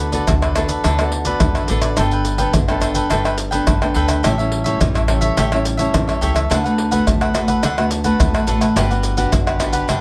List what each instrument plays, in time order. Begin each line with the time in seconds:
Already playing: upright bass D2, nylon-string guitar D3 A4, cavaquinho A4 B4 D5
0.12 nylon-string guitar B3 F#4 A4, cavaquinho A4 B4 D5, pandeiro, maracas, surdo
0.27 upright bass D2, nylon-string guitar D3, muted cavaquinho stroke, pandeiro, tamborim, maracas, surdo
0.42 cavaquinho A4 B4 D5, pandeiro, tamborim, maracas
0.55 nylon-string guitar B3 F#4 A4, cavaquinho D4 A4 B4 D5, pandeiro, tamborim, maracas
0.69 cavaquinho A4 B4 D5, pandeiro, maracas, surdo
0.84 upright bass D2, nylon-string guitar D3, cavaquinho D4 A4 B4 D5, pandeiro, tamborim, maracas, surdo
0.98 nylon-string guitar B3 F#4 A4, cavaquinho A4 B4 D5, pandeiro, tamborim, maracas
1.12 muted cavaquinho stroke, pandeiro
1.25 nylon-string guitar B3 F#4 A4, cavaquinho A4 B4 D5, pandeiro, maracas, surdo
1.40 upright bass D2, nylon-string guitar D3, pandeiro, tamborim, maracas, surdo
1.55 cavaquinho A4 B4 D5, pandeiro, tamborim, maracas
1.68 upright bass A1, nylon-string guitar B3 F#4 A4, cavaquinho D4 A4 B4 D5, pandeiro, maracas
1.82 cavaquinho A4 B4 D5, pandeiro, tamborim, maracas, surdo
1.97 upright bass G1, nylon-string guitar G3 B3 D4 A4, cavaquinho D4 A4 B4 G5, pandeiro, tamborim, maracas, surdo
2.11 cavaquinho A4 B4 G5, pandeiro, maracas
2.25 pandeiro, maracas
2.38 nylon-string guitar B3 D4 A4, cavaquinho A4 B4 G5, pandeiro, maracas, surdo
2.53 upright bass G1, nylon-string guitar D3, muted cavaquinho stroke, pandeiro, tamborim, maracas, surdo
2.68 nylon-string guitar B3 D4 A4, cavaquinho A4 B4 G5, pandeiro, tamborim, maracas
2.80 cavaquinho D4 A4 B4 G5, pandeiro, tamborim, maracas
2.94 cavaquinho A4 B4 G5, pandeiro, maracas, surdo
3.10 upright bass G1, nylon-string guitar G3 B3 D4 A4, cavaquinho D4 A4 B4 G5, pandeiro, tamborim, maracas, surdo
3.24 cavaquinho A4 B4 G5, pandeiro, tamborim, maracas
3.37 muted cavaquinho stroke, pandeiro, maracas
3.51 nylon-string guitar B3 D4 A4, cavaquinho A4 B4 G5, pandeiro, maracas, surdo
3.67 upright bass G1, nylon-string guitar D3, pandeiro, tamborim, maracas, surdo
3.81 nylon-string guitar B3 D4 A4, cavaquinho A4 B4 G5, pandeiro, tamborim, maracas
3.94 upright bass D2, cavaquinho D4 A4 B4 G5, pandeiro
4.08 cavaquinho A4 B4 G5, pandeiro, tamborim, maracas, surdo
4.23 upright bass A1, nylon-string guitar A2 G3 C#4 E4, cavaquinho G4 A4 C#5 E5, pandeiro, tamborim, maracas, surdo
4.38 nylon-string guitar G3 C#4 E4, cavaquinho A4 C#5 E5, pandeiro, maracas
4.52 pandeiro
4.64 nylon-string guitar G3 C#4 E4, cavaquinho A4 C#5 E5, pandeiro, maracas, surdo
4.80 upright bass A1, nylon-string guitar E3, muted cavaquinho stroke, pandeiro, tamborim, maracas, surdo
4.94 cavaquinho A4 C#5 E5, pandeiro, tamborim, maracas
5.08 nylon-string guitar G3 C#4 E4, cavaquinho G4 A4 C#5 E5, pandeiro, tamborim, surdo
5.21 cavaquinho A4 C#5 E5, pandeiro, maracas, surdo
5.37 upright bass A1, nylon-string guitar A2, cavaquinho G4 A4 C#5 E5, pandeiro, tamborim, maracas, surdo
5.52 nylon-string guitar G3 C#4 E4, cavaquinho A4 C#5 E5, pandeiro, tamborim, maracas
5.65 muted cavaquinho stroke, pandeiro, maracas
5.77 nylon-string guitar G3 C#4 E4, cavaquinho A4 C#5 E5, pandeiro, maracas, surdo
5.94 upright bass A1, nylon-string guitar E3, pandeiro, tamborim, maracas, surdo
6.08 cavaquinho A4 C#5 E5, pandeiro, tamborim, maracas
6.21 upright bass C#2, nylon-string guitar G3 C#4 E4, cavaquinho G4 A4 C#5 E5, pandeiro, maracas
6.34 cavaquinho A4 C#5 E5, pandeiro, tamborim, maracas, surdo
6.50 upright bass D2, nylon-string guitar D3 A3 B3 F#4, cavaquinho D4 A4 B4 F#5, pandeiro, tamborim, maracas, surdo
6.64 nylon-string guitar A3 B3 F#4, cavaquinho A4 B4 F#5, pandeiro, maracas
6.78 pandeiro
6.91 nylon-string guitar A3 B3 F#4, cavaquinho A4 B4 F#5, pandeiro, maracas, surdo
7.06 upright bass D2, nylon-string guitar A2, muted cavaquinho stroke, pandeiro, tamborim, maracas, surdo
7.21 cavaquinho A4 B4 F#5, pandeiro, tamborim, maracas
7.34 nylon-string guitar A3 B3 F#4, cavaquinho D4 A4 B4 F#5, pandeiro, tamborim, maracas, surdo
7.48 cavaquinho A4 B4 F#5, pandeiro, maracas, surdo
7.63 upright bass D2, nylon-string guitar D3, cavaquinho D4 A4 B4 F#5, pandeiro, tamborim, maracas, surdo
7.78 nylon-string guitar A3 B3 F#4, cavaquinho A4 B4 F#5, pandeiro, tamborim, maracas
7.91 muted cavaquinho stroke, pandeiro, maracas
8.04 nylon-string guitar A3 B3 F#4, cavaquinho A4 B4 F#5, pandeiro, maracas, surdo
8.20 upright bass D2, nylon-string guitar A2, pandeiro, tamborim, maracas, surdo
8.34 cavaquinho A4 B4 F#5, pandeiro, tamborim, maracas
8.47 upright bass A1, nylon-string guitar A3 B3 F#4, cavaquinho D4 A4 B4 F#5, pandeiro, maracas
8.61 cavaquinho A4 B4 F#5, pandeiro, tamborim, maracas, surdo
8.76 upright bass G1, nylon-string guitar G3 B3 D4 F#4, cavaquinho D4 G4 B4 F#5, pandeiro, tamborim, maracas, surdo
8.91 nylon-string guitar B3 D4 F#4, cavaquinho G4 B4 F#5, pandeiro, maracas
9.03 pandeiro, maracas
9.17 nylon-string guitar B3 D4 F#4, cavaquinho G4 B4 F#5, pandeiro, maracas, surdo
9.32 upright bass G1, nylon-string guitar D3, muted cavaquinho stroke, pandeiro, tamborim, maracas, surdo
9.47 cavaquinho G4 B4 F#5, pandeiro, tamborim, maracas
9.59 nylon-string guitar B3 D4 F#4, cavaquinho D4 G4 B4 F#5, pandeiro, tamborim, maracas, surdo
9.72 cavaquinho G4 B4 F#5, pandeiro, maracas, surdo
9.88 upright bass G1, nylon-string guitar G3, cavaquinho D4 G4 B4 F#5, pandeiro, tamborim, maracas, surdo